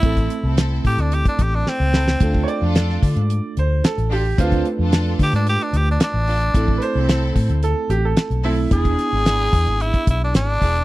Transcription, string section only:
X:1
M:4/4
L:1/16
Q:1/4=111
K:Am
V:1 name="String section"
[CEA]2 z [CEA]4 z6 z [CEA] z | [DFA]2 z [DFA]4 z6 z [DFA] z | [DFA]2 z [DFA]4 z6 z [DFA] z | [CEA]2 z [CEA]4 z6 z [CEA] z |
[DE^G]2 z [DEG]4 z6 z [DEG] z |]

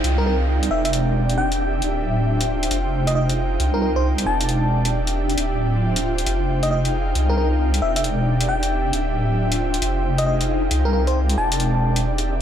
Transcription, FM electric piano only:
X:1
M:4/4
L:1/16
Q:"Swing 16ths" 1/4=135
K:Ephr
V:1 name="FM electric piano"
z _B B z3 e e z4 g4 | z8 z3 _e e z3 | z _B B c z2 a6 z4 | z8 z3 _e e z3 |
z _B B z3 e e z4 g4 | z8 z3 _e e z3 | z _B B c z2 a6 z4 |]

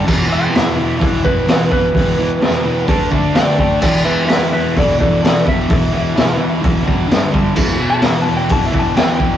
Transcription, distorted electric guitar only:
X:1
M:4/4
L:1/8
Q:1/4=128
K:Em
V:1 name="Distorted electric guitar" clef=bass
[E,,B,,E,] [E,,B,,E,] [E,,B,,E,] [E,,B,,E,] [E,,B,,E,] [E,,B,,E,] [E,,B,,E,] [E,,B,,E,] | [E,,B,,E,] [E,,B,,E,] [E,,B,,E,] [E,,B,,E,] [D,A,D] [D,A,D] [D,A,D] [D,A,D] | [E,,B,,E,] [E,,B,,E,] [E,,B,,E,] [E,,B,,E,] [E,,B,,E,] [E,,B,,E,] [E,,B,,E,] [E,,B,,E,] | [E,,B,,E,] [E,,B,,E,] [E,,B,,E,] [E,,B,,E,] [E,,B,,E,] [E,,B,,E,] [G,,D,G,] [G,,D,G,] |
[E,,B,,E,] [E,,B,,E,] [E,,B,,E,] [E,,B,,E,] [E,,B,,E,] [E,,B,,E,] [E,,B,,E,] [E,,B,,E,] |]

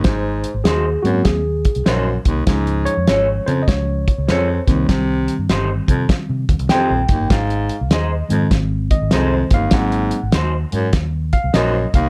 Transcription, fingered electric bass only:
X:1
M:4/4
L:1/16
Q:"Swing" 1/4=99
K:Ab
V:1 name="Fingered electric bass" clef=bass
A,,,3 A,,, E,,2 A,,2 E,,3 C,, B,,,2 C,,2 | D,,3 F,, A,,,2 D,2 D,,3 D,, F,,2 C,,2 | C,,3 G,, G,,,2 C,2 z C, E,, C,, z B,,, _G,,, =G,,, | A,,,3 C,, E,,2 A,,2 A,,,3 A,,, C,,2 G,,,2 |
A,,,3 A,,, E,,2 A,,2 E,,3 C,, B,,,2 C,,2 |]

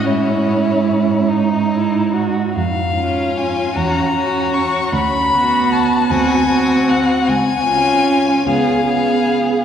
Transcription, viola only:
X:1
M:6/8
L:1/8
Q:3/8=51
K:G#phr
V:1 name="Viola"
C3 D E F | [K:C#phr] z C2 C C2 | z B,2 =C C2 | z C2 B, B,2 |]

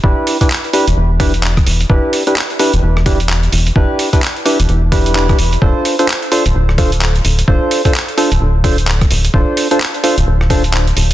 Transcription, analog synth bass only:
X:1
M:4/4
L:1/16
Q:"Swing 16ths" 1/4=129
K:Ephr
V:1 name="Analog synth bass" clef=bass
E,,, z6 E,,, E,,,6 E,,, z | E,,, z6 E,,, E,,,6 E,,, z | E,,, z6 E,,, E,,,6 E,,, z | D,,, z6 D,,, D,,,6 D,,, z |
D,,, z6 D,,, D,,,6 D,,, z | D,,, z6 D,,, D,,,6 D,,, z |]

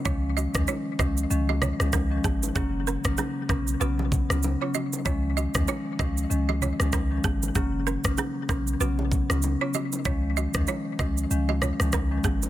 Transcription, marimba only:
X:1
M:4/4
L:1/16
Q:"Swing 16ths" 1/4=96
K:C#mix
V:1 name="Marimba" clef=bass
[D,E,G,C]3 [D,E,G,C]3 [D,E,G,C]2 [D,E,G,C] z2 [D,E,G,C] z [D,E,G,C] z2 | [C,F,A,C]3 [C,F,A,C]3 [C,F,B,C]2 [C,F,B,C] z2 [C,F,B,C] z [C,F,B,C] z2 | [D,E,G,C]3 [D,E,G,C]3 [D,E,G,C]2 [D,E,G,C] z2 [D,E,G,C] z [D,E,G,C] z2 | [C,F,A,C]3 [C,F,A,C]3 [C,F,B,C]2 [C,F,B,C] z2 [C,F,B,C] z [C,F,B,C] z2 |
[D,E,G,C]3 [D,E,G,C]3 [D,E,G,C]2 [D,E,G,C] z2 [D,E,G,C] z [D,E,G,C] z2 |]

